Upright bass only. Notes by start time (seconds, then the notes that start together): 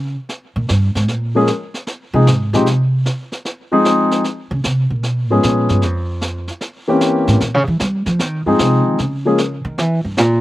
Already playing: C#3
0.56 A#2
0.70 G2
0.95 G#2
1.09 A#2
2.14 C3
2.27 G#2
2.53 A#2
2.66 C3
4.51 C#3
4.65 C3
4.90 A#2
5.04 B2
5.30 G#2
5.44 A#2
5.70 G2
5.83 F2
7.28 A2
7.42 A#2
7.54 C#3
7.68 E3
7.81 G3
8.06 F3
8.21 D#3
8.46 G2
8.60 C3
8.86 D#3
9.00 C#3
9.65 D#3
9.78 E3
10.05 G2
10.18 A#2